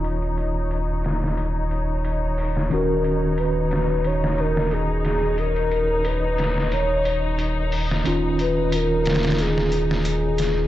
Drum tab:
HH |x-x-x---x---x---x---x---x---o---|x---x---x---x---x---x---x---x---|x-x-x---x---x---x---x---x---o---|x---x---x---xxxxx---x---x---x---|
SD |------------o-o---------------o-|------------o-----o---o-----o---|------------o-o---------------o-|------------oooo--o---o-----o---|